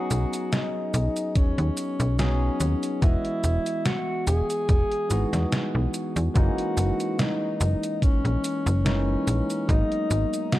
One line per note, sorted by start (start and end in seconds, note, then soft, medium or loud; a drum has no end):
0.00 2.14 F#3 loud
0.00 2.14 B3 medium
0.00 2.15 C#4 medium
0.00 2.15 D#4 medium
0.00 0.54 F#4 loud
0.00 2.15 G#4 loud
0.11 0.25 B1 medium
0.11 closed hi-hat medium
0.11 cabasa medium
0.33 closed hi-hat medium
0.33 cabasa soft
0.53 1.37 D#4 medium
0.53 snare loud
0.53 closed hi-hat medium
0.53 cabasa soft
0.94 1.09 B1 medium
0.94 closed hi-hat medium
0.94 cabasa medium
1.17 closed hi-hat medium
1.17 cabasa soft
1.36 1.54 D#2 soft
1.36 2.18 C#4 medium
1.36 kick loud
1.36 closed hi-hat medium
1.36 cabasa soft
1.58 1.71 D#2 medium
1.58 closed hi-hat soft
1.77 closed hi-hat medium
1.77 cabasa medium
2.00 2.50 B1 loud
2.00 closed hi-hat medium
2.00 cabasa soft
2.18 2.97 F#3 medium
2.18 2.98 B3 medium
2.18 3.04 C#4 medium
2.18 2.98 C#4 medium
2.18 2.98 D#4 medium
2.18 2.98 G#4 medium
2.18 snare loud
2.18 closed hi-hat medium
2.18 cabasa soft
2.60 2.75 D#2 medium
2.60 closed hi-hat medium
2.60 cabasa medium
2.83 closed hi-hat soft
2.83 cabasa soft
3.01 3.17 E1 loud
3.01 5.05 E3 medium
3.01 5.06 G#3 medium
3.01 5.06 B3 medium
3.01 3.87 E4 loud
3.01 5.07 F#4 medium
3.01 5.06 D#5 medium
3.01 kick loud
3.01 closed hi-hat medium
3.01 cabasa soft
3.25 closed hi-hat soft
3.44 3.59 E1 medium
3.44 closed hi-hat medium
3.44 cabasa medium
3.66 closed hi-hat soft
3.66 cabasa soft
3.86 4.27 F#4 loud
3.86 snare loud
3.86 closed hi-hat medium
3.86 cabasa soft
4.27 4.42 E1 medium
4.27 5.90 G#4 loud
4.27 closed hi-hat medium
4.27 cabasa medium
4.50 closed hi-hat medium
4.50 cabasa soft
4.69 4.84 E1 medium
4.69 kick loud
4.69 closed hi-hat medium
4.69 cabasa soft
4.92 closed hi-hat soft
5.09 5.25 G#1 medium
5.09 6.30 E3 medium
5.09 6.31 G#3 medium
5.09 6.31 B3 medium
5.09 6.31 D#4 medium
5.09 6.32 F#4 medium
5.09 closed hi-hat medium
5.09 cabasa medium
5.33 5.45 E2 medium
5.33 snare soft
5.33 closed hi-hat medium
5.33 cabasa soft
5.52 snare loud
5.52 closed hi-hat medium
5.52 cabasa soft
5.75 5.87 B1 medium
5.94 closed hi-hat medium
5.94 cabasa medium
6.16 6.29 E2 medium
6.16 closed hi-hat medium
6.16 cabasa soft
6.34 6.50 F#1 loud
6.34 8.80 E3 medium
6.34 8.81 G#3 medium
6.34 8.81 A#3 medium
6.34 8.81 C#4 medium
6.34 8.82 D#4 loud
6.34 7.21 F#4 loud
6.34 kick loud
6.34 closed hi-hat medium
6.34 cabasa soft
6.58 closed hi-hat soft
6.77 6.92 F#1 medium
6.77 closed hi-hat medium
6.77 cabasa medium
7.00 closed hi-hat soft
7.00 cabasa soft
7.19 8.04 D#4 medium
7.19 snare loud
7.19 closed hi-hat medium
7.19 cabasa soft
7.61 7.75 F#1 loud
7.61 closed hi-hat medium
7.61 cabasa medium
7.83 closed hi-hat soft
7.83 cabasa soft
8.02 8.20 A#1 soft
8.02 8.86 C#4 medium
8.02 kick loud
8.02 closed hi-hat medium
8.02 cabasa soft
8.25 8.37 A#1 medium
8.25 closed hi-hat soft
8.44 closed hi-hat medium
8.44 cabasa medium
8.66 9.16 F#1 loud
8.66 closed hi-hat soft
8.66 cabasa soft
8.85 9.64 E3 medium
8.85 9.64 G#3 medium
8.85 9.64 A#3 medium
8.85 9.64 C#4 medium
8.85 9.65 C#4 medium
8.85 9.65 D#4 medium
8.85 snare loud
8.85 closed hi-hat medium
8.85 cabasa soft
9.27 9.42 A#1 medium
9.27 closed hi-hat medium
9.27 cabasa medium
9.50 closed hi-hat soft
9.50 cabasa soft
9.67 9.84 G#1 loud
9.67 10.59 F#3 medium
9.67 10.59 G#3 medium
9.67 10.59 A#3 medium
9.67 10.59 B3 medium
9.67 10.55 D#4 loud
9.67 10.59 D#4 medium
9.67 kick loud
9.67 closed hi-hat medium
9.67 cabasa soft
9.92 closed hi-hat soft
10.11 10.25 G#1 medium
10.11 closed hi-hat medium
10.11 cabasa medium
10.34 closed hi-hat soft
10.34 cabasa soft
10.52 10.59 F#4 loud
10.52 snare loud
10.52 closed hi-hat medium
10.52 cabasa soft